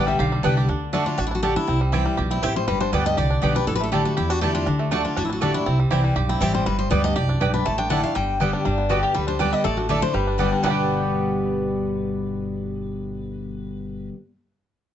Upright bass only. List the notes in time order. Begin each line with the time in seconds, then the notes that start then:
Already playing: A1
0.19 B1
0.44 C2
0.68 D2
1.18 A1
1.68 C2
2.18 B1
2.42 A1
2.67 G1
2.92 D2
3.17 C2
3.42 B1
3.67 A1
4.18 E2
4.67 D2
5.17 A1
5.66 C2
5.91 C2
6.16 B1
6.41 A1
6.66 G1
6.91 D2
7.16 C2
7.41 B1
7.65 A1
8.16 G1
8.65 G1
9.15 D2
9.64 A1
10.14 G1
10.63 G1